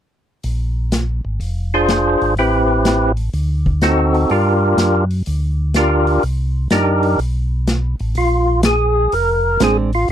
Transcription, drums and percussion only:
0, 0, Header, 1, 2, 480
1, 0, Start_track
1, 0, Tempo, 481928
1, 444, Time_signature, 4, 2, 24, 8
1, 10079, End_track
2, 0, Start_track
2, 0, Title_t, "Drums"
2, 433, Note_on_c, 9, 46, 33
2, 533, Note_off_c, 9, 46, 0
2, 915, Note_on_c, 9, 42, 43
2, 918, Note_on_c, 9, 38, 49
2, 1015, Note_off_c, 9, 42, 0
2, 1018, Note_off_c, 9, 38, 0
2, 1399, Note_on_c, 9, 46, 35
2, 1499, Note_off_c, 9, 46, 0
2, 1877, Note_on_c, 9, 42, 37
2, 1880, Note_on_c, 9, 38, 46
2, 1976, Note_off_c, 9, 42, 0
2, 1979, Note_off_c, 9, 38, 0
2, 2206, Note_on_c, 9, 46, 26
2, 2306, Note_off_c, 9, 46, 0
2, 2360, Note_on_c, 9, 46, 31
2, 2459, Note_off_c, 9, 46, 0
2, 2838, Note_on_c, 9, 42, 41
2, 2841, Note_on_c, 9, 38, 51
2, 2938, Note_off_c, 9, 42, 0
2, 2941, Note_off_c, 9, 38, 0
2, 3156, Note_on_c, 9, 46, 28
2, 3255, Note_off_c, 9, 46, 0
2, 3320, Note_on_c, 9, 46, 37
2, 3420, Note_off_c, 9, 46, 0
2, 3645, Note_on_c, 9, 36, 38
2, 3745, Note_off_c, 9, 36, 0
2, 3799, Note_on_c, 9, 42, 40
2, 3802, Note_on_c, 9, 38, 51
2, 3899, Note_off_c, 9, 42, 0
2, 3902, Note_off_c, 9, 38, 0
2, 4126, Note_on_c, 9, 46, 26
2, 4226, Note_off_c, 9, 46, 0
2, 4278, Note_on_c, 9, 46, 33
2, 4377, Note_off_c, 9, 46, 0
2, 4759, Note_on_c, 9, 42, 44
2, 4762, Note_on_c, 9, 38, 53
2, 4859, Note_off_c, 9, 42, 0
2, 4862, Note_off_c, 9, 38, 0
2, 5085, Note_on_c, 9, 46, 30
2, 5185, Note_off_c, 9, 46, 0
2, 5239, Note_on_c, 9, 46, 37
2, 5338, Note_off_c, 9, 46, 0
2, 5719, Note_on_c, 9, 42, 40
2, 5722, Note_on_c, 9, 38, 45
2, 5819, Note_off_c, 9, 42, 0
2, 5822, Note_off_c, 9, 38, 0
2, 6046, Note_on_c, 9, 46, 27
2, 6145, Note_off_c, 9, 46, 0
2, 6204, Note_on_c, 9, 46, 35
2, 6304, Note_off_c, 9, 46, 0
2, 6677, Note_on_c, 9, 42, 43
2, 6680, Note_on_c, 9, 38, 56
2, 6777, Note_off_c, 9, 42, 0
2, 6780, Note_off_c, 9, 38, 0
2, 7000, Note_on_c, 9, 46, 29
2, 7100, Note_off_c, 9, 46, 0
2, 7162, Note_on_c, 9, 46, 33
2, 7262, Note_off_c, 9, 46, 0
2, 7642, Note_on_c, 9, 42, 41
2, 7645, Note_on_c, 9, 38, 52
2, 7742, Note_off_c, 9, 42, 0
2, 7745, Note_off_c, 9, 38, 0
2, 7963, Note_on_c, 9, 46, 25
2, 8062, Note_off_c, 9, 46, 0
2, 8116, Note_on_c, 9, 46, 38
2, 8216, Note_off_c, 9, 46, 0
2, 8596, Note_on_c, 9, 42, 54
2, 8599, Note_on_c, 9, 38, 69
2, 8695, Note_off_c, 9, 42, 0
2, 8698, Note_off_c, 9, 38, 0
2, 9086, Note_on_c, 9, 46, 43
2, 9185, Note_off_c, 9, 46, 0
2, 9562, Note_on_c, 9, 42, 46
2, 9565, Note_on_c, 9, 38, 55
2, 9662, Note_off_c, 9, 42, 0
2, 9665, Note_off_c, 9, 38, 0
2, 9887, Note_on_c, 9, 46, 31
2, 9986, Note_off_c, 9, 46, 0
2, 10039, Note_on_c, 9, 46, 35
2, 10079, Note_off_c, 9, 46, 0
2, 10079, End_track
0, 0, End_of_file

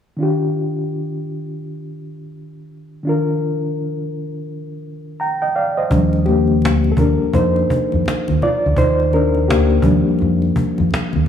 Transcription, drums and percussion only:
0, 0, Header, 1, 3, 480
1, 0, Start_track
1, 0, Key_signature, -3, "major"
1, 0, Tempo, 714286
1, 127, Time_signature, 4, 2, 24, 8
1, 7584, End_track
2, 0, Start_track
2, 0, Title_t, "Cajon"
2, 3970, Note_on_c, 9, 36, 96
2, 4038, Note_off_c, 9, 36, 0
2, 4226, Note_on_c, 9, 38, 39
2, 4294, Note_off_c, 9, 38, 0
2, 4379, Note_on_c, 9, 38, 23
2, 4446, Note_off_c, 9, 38, 0
2, 4470, Note_on_c, 9, 38, 113
2, 4537, Note_off_c, 9, 38, 0
2, 4606, Note_on_c, 9, 38, 18
2, 4673, Note_off_c, 9, 38, 0
2, 4683, Note_on_c, 9, 36, 87
2, 4750, Note_off_c, 9, 36, 0
2, 4852, Note_on_c, 9, 38, 25
2, 4919, Note_off_c, 9, 38, 0
2, 4929, Note_on_c, 9, 36, 85
2, 4951, Note_on_c, 9, 38, 37
2, 4996, Note_off_c, 9, 36, 0
2, 5018, Note_off_c, 9, 38, 0
2, 5091, Note_on_c, 9, 38, 17
2, 5158, Note_off_c, 9, 38, 0
2, 5176, Note_on_c, 9, 36, 81
2, 5243, Note_off_c, 9, 36, 0
2, 5327, Note_on_c, 9, 38, 23
2, 5394, Note_off_c, 9, 38, 0
2, 5429, Note_on_c, 9, 38, 105
2, 5496, Note_off_c, 9, 38, 0
2, 5574, Note_on_c, 9, 38, 18
2, 5641, Note_off_c, 9, 38, 0
2, 5666, Note_on_c, 9, 38, 28
2, 5733, Note_off_c, 9, 38, 0
2, 5809, Note_on_c, 9, 38, 24
2, 5820, Note_off_c, 9, 38, 0
2, 5820, Note_on_c, 9, 38, 34
2, 5887, Note_off_c, 9, 38, 0
2, 5890, Note_on_c, 9, 36, 95
2, 5957, Note_off_c, 9, 36, 0
2, 6142, Note_on_c, 9, 38, 41
2, 6209, Note_off_c, 9, 38, 0
2, 6298, Note_on_c, 9, 38, 24
2, 6365, Note_off_c, 9, 38, 0
2, 6387, Note_on_c, 9, 38, 108
2, 6454, Note_off_c, 9, 38, 0
2, 6522, Note_on_c, 9, 38, 18
2, 6589, Note_off_c, 9, 38, 0
2, 6601, Note_on_c, 9, 36, 85
2, 6669, Note_off_c, 9, 36, 0
2, 6774, Note_on_c, 9, 38, 25
2, 6841, Note_off_c, 9, 38, 0
2, 6854, Note_on_c, 9, 38, 41
2, 6866, Note_off_c, 9, 38, 0
2, 6866, Note_on_c, 9, 38, 34
2, 6933, Note_off_c, 9, 38, 0
2, 7010, Note_on_c, 9, 38, 16
2, 7078, Note_off_c, 9, 38, 0
2, 7096, Note_on_c, 9, 36, 88
2, 7163, Note_off_c, 9, 36, 0
2, 7250, Note_on_c, 9, 38, 25
2, 7317, Note_off_c, 9, 38, 0
2, 7349, Note_on_c, 9, 38, 106
2, 7417, Note_off_c, 9, 38, 0
2, 7493, Note_on_c, 9, 38, 18
2, 7560, Note_off_c, 9, 38, 0
2, 7584, End_track
3, 0, Start_track
3, 0, Title_t, "Drums"
3, 3969, Note_on_c, 9, 62, 26
3, 3969, Note_on_c, 9, 64, 56
3, 4037, Note_off_c, 9, 62, 0
3, 4037, Note_off_c, 9, 64, 0
3, 4119, Note_on_c, 9, 62, 28
3, 4186, Note_off_c, 9, 62, 0
3, 4205, Note_on_c, 9, 63, 64
3, 4273, Note_off_c, 9, 63, 0
3, 4351, Note_on_c, 9, 63, 37
3, 4418, Note_off_c, 9, 63, 0
3, 4448, Note_on_c, 9, 62, 31
3, 4515, Note_off_c, 9, 62, 0
3, 4599, Note_on_c, 9, 62, 26
3, 4666, Note_off_c, 9, 62, 0
3, 4688, Note_on_c, 9, 64, 60
3, 4755, Note_off_c, 9, 64, 0
3, 5082, Note_on_c, 9, 62, 27
3, 5149, Note_off_c, 9, 62, 0
3, 5323, Note_on_c, 9, 63, 58
3, 5390, Note_off_c, 9, 63, 0
3, 5414, Note_on_c, 9, 62, 32
3, 5481, Note_off_c, 9, 62, 0
3, 5563, Note_on_c, 9, 62, 28
3, 5563, Note_on_c, 9, 63, 63
3, 5631, Note_off_c, 9, 62, 0
3, 5631, Note_off_c, 9, 63, 0
3, 5660, Note_on_c, 9, 63, 59
3, 5660, Note_on_c, 9, 64, 64
3, 5727, Note_off_c, 9, 63, 0
3, 5727, Note_off_c, 9, 64, 0
3, 5900, Note_on_c, 9, 62, 26
3, 5900, Note_on_c, 9, 64, 53
3, 5967, Note_off_c, 9, 62, 0
3, 5967, Note_off_c, 9, 64, 0
3, 6047, Note_on_c, 9, 62, 27
3, 6114, Note_off_c, 9, 62, 0
3, 6135, Note_on_c, 9, 63, 61
3, 6202, Note_off_c, 9, 63, 0
3, 6281, Note_on_c, 9, 63, 42
3, 6348, Note_off_c, 9, 63, 0
3, 6521, Note_on_c, 9, 62, 24
3, 6588, Note_off_c, 9, 62, 0
3, 6619, Note_on_c, 9, 64, 58
3, 6687, Note_off_c, 9, 64, 0
3, 6845, Note_on_c, 9, 62, 27
3, 6913, Note_off_c, 9, 62, 0
3, 7002, Note_on_c, 9, 62, 23
3, 7070, Note_off_c, 9, 62, 0
3, 7244, Note_on_c, 9, 63, 57
3, 7311, Note_off_c, 9, 63, 0
3, 7329, Note_on_c, 9, 62, 31
3, 7396, Note_off_c, 9, 62, 0
3, 7479, Note_on_c, 9, 62, 28
3, 7479, Note_on_c, 9, 63, 62
3, 7546, Note_off_c, 9, 62, 0
3, 7546, Note_off_c, 9, 63, 0
3, 7584, End_track
0, 0, End_of_file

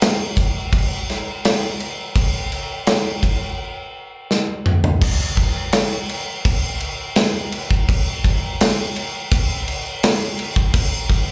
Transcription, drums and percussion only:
0, 0, Header, 1, 2, 480
1, 0, Start_track
1, 0, Tempo, 715990
1, 1437, Time_signature, 4, 2, 24, 8
1, 7586, End_track
2, 0, Start_track
2, 0, Title_t, "Drums"
2, 10, Note_on_c, 9, 49, 87
2, 15, Note_on_c, 9, 38, 112
2, 77, Note_off_c, 9, 49, 0
2, 82, Note_off_c, 9, 38, 0
2, 247, Note_on_c, 9, 36, 85
2, 251, Note_on_c, 9, 49, 65
2, 314, Note_off_c, 9, 36, 0
2, 318, Note_off_c, 9, 49, 0
2, 487, Note_on_c, 9, 36, 108
2, 487, Note_on_c, 9, 49, 86
2, 554, Note_off_c, 9, 36, 0
2, 554, Note_off_c, 9, 49, 0
2, 734, Note_on_c, 9, 49, 59
2, 739, Note_on_c, 9, 38, 34
2, 801, Note_off_c, 9, 49, 0
2, 806, Note_off_c, 9, 38, 0
2, 970, Note_on_c, 9, 49, 83
2, 975, Note_on_c, 9, 38, 113
2, 1037, Note_off_c, 9, 49, 0
2, 1042, Note_off_c, 9, 38, 0
2, 1209, Note_on_c, 9, 49, 57
2, 1276, Note_off_c, 9, 49, 0
2, 1445, Note_on_c, 9, 36, 112
2, 1449, Note_on_c, 9, 49, 83
2, 1512, Note_off_c, 9, 36, 0
2, 1516, Note_off_c, 9, 49, 0
2, 1689, Note_on_c, 9, 49, 56
2, 1756, Note_off_c, 9, 49, 0
2, 1922, Note_on_c, 9, 49, 81
2, 1926, Note_on_c, 9, 38, 117
2, 1989, Note_off_c, 9, 49, 0
2, 1993, Note_off_c, 9, 38, 0
2, 2164, Note_on_c, 9, 36, 78
2, 2168, Note_on_c, 9, 49, 63
2, 2231, Note_off_c, 9, 36, 0
2, 2235, Note_off_c, 9, 49, 0
2, 2888, Note_on_c, 9, 38, 63
2, 2955, Note_off_c, 9, 38, 0
2, 3123, Note_on_c, 9, 45, 95
2, 3190, Note_off_c, 9, 45, 0
2, 3244, Note_on_c, 9, 43, 91
2, 3311, Note_off_c, 9, 43, 0
2, 3362, Note_on_c, 9, 36, 122
2, 3362, Note_on_c, 9, 49, 98
2, 3362, Note_on_c, 9, 57, 126
2, 3429, Note_off_c, 9, 36, 0
2, 3429, Note_off_c, 9, 49, 0
2, 3429, Note_off_c, 9, 57, 0
2, 3600, Note_on_c, 9, 49, 63
2, 3602, Note_on_c, 9, 36, 82
2, 3667, Note_off_c, 9, 49, 0
2, 3669, Note_off_c, 9, 36, 0
2, 3838, Note_on_c, 9, 49, 90
2, 3843, Note_on_c, 9, 38, 109
2, 3905, Note_off_c, 9, 49, 0
2, 3910, Note_off_c, 9, 38, 0
2, 4085, Note_on_c, 9, 49, 66
2, 4152, Note_off_c, 9, 49, 0
2, 4324, Note_on_c, 9, 49, 90
2, 4325, Note_on_c, 9, 36, 121
2, 4391, Note_off_c, 9, 49, 0
2, 4392, Note_off_c, 9, 36, 0
2, 4562, Note_on_c, 9, 49, 63
2, 4629, Note_off_c, 9, 49, 0
2, 4797, Note_on_c, 9, 49, 83
2, 4802, Note_on_c, 9, 38, 113
2, 4864, Note_off_c, 9, 49, 0
2, 4869, Note_off_c, 9, 38, 0
2, 5043, Note_on_c, 9, 49, 62
2, 5110, Note_off_c, 9, 49, 0
2, 5166, Note_on_c, 9, 36, 86
2, 5233, Note_off_c, 9, 36, 0
2, 5287, Note_on_c, 9, 36, 116
2, 5290, Note_on_c, 9, 49, 88
2, 5354, Note_off_c, 9, 36, 0
2, 5357, Note_off_c, 9, 49, 0
2, 5527, Note_on_c, 9, 36, 91
2, 5533, Note_on_c, 9, 49, 61
2, 5594, Note_off_c, 9, 36, 0
2, 5600, Note_off_c, 9, 49, 0
2, 5769, Note_on_c, 9, 49, 83
2, 5774, Note_on_c, 9, 38, 117
2, 5836, Note_off_c, 9, 49, 0
2, 5841, Note_off_c, 9, 38, 0
2, 6008, Note_on_c, 9, 49, 68
2, 6075, Note_off_c, 9, 49, 0
2, 6246, Note_on_c, 9, 36, 115
2, 6252, Note_on_c, 9, 49, 89
2, 6313, Note_off_c, 9, 36, 0
2, 6319, Note_off_c, 9, 49, 0
2, 6488, Note_on_c, 9, 49, 67
2, 6555, Note_off_c, 9, 49, 0
2, 6725, Note_on_c, 9, 49, 94
2, 6730, Note_on_c, 9, 38, 123
2, 6792, Note_off_c, 9, 49, 0
2, 6797, Note_off_c, 9, 38, 0
2, 6964, Note_on_c, 9, 49, 72
2, 7031, Note_off_c, 9, 49, 0
2, 7081, Note_on_c, 9, 36, 90
2, 7148, Note_off_c, 9, 36, 0
2, 7198, Note_on_c, 9, 49, 100
2, 7199, Note_on_c, 9, 36, 115
2, 7265, Note_off_c, 9, 49, 0
2, 7266, Note_off_c, 9, 36, 0
2, 7437, Note_on_c, 9, 49, 66
2, 7438, Note_on_c, 9, 36, 88
2, 7504, Note_off_c, 9, 49, 0
2, 7505, Note_off_c, 9, 36, 0
2, 7586, End_track
0, 0, End_of_file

